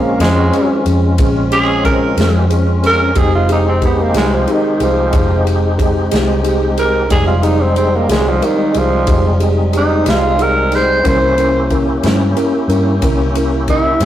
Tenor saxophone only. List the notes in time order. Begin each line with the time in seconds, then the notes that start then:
Already playing: A#3
0.21 G#3
1.52 G#4
1.85 A#4
2.86 A#4
3.18 G#4
3.35 F4
3.52 D#4
3.68 C4
3.85 B3
4.01 A#3
4.17 G#3
4.34 F3
4.52 D#3
4.84 F3
6.79 A#4
7.11 G#4
7.27 F4
7.43 D#4
7.61 C4
7.77 C4
7.95 A#3
8.11 G#3
8.28 F3
8.44 D#3
8.78 F3
9.77 D#4
10.09 F4
10.43 A#4
10.75 C5
11.08 C5
13.70 E4